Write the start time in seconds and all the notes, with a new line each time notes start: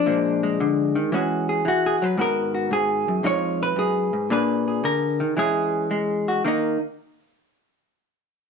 Already playing: D4
0.06 A#2 F3 G#3
0.43 G#3
0.60 D3
0.95 D#3
1.12 E3 G#3 C#4 F#4 G#4
1.49 G#4
1.65 E3 F#4
1.86 G#4
2.02 F#3 B4
2.18 G#2 D#3 B3 F#4 A#4
2.55 F#4
2.71 G#2 G#4
3.08 F#2
3.23 F2 G#3 D#4 F4 C#5
3.63 B4
3.76 F#2 G#4
4.13 G#2
4.30 A#2 A#3 D4 G#4 B4
4.68 G#4
4.84 D3 A#4
5.20 D#3
5.37 E3 G#3 C#4 G#4
5.91 G#3
6.28 F#4
6.45 D#3 A#3 D#4